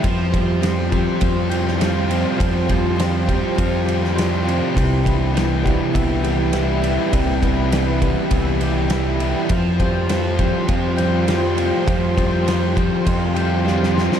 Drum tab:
RD |x-x-x-x-x-x-x-x-|x-x-x-x-x-x-x-x-|x-x-x-x-x-x-x-x-|x-x-x-x-x-x-x-x-|
SD |----o------oo---|----o------oo---|----o-------o---|----o-------o---|
BD |o-o---o-o-------|o-o---o-o-------|o-o---o-o-------|o-o---o-o-------|

RD |x-x-x-x-x-x-x-x-|x-x-x-x-x-x-----|
SD |----o-------o---|----o-------oooo|
BD |o-o---o-o-------|o-o---o-o-------|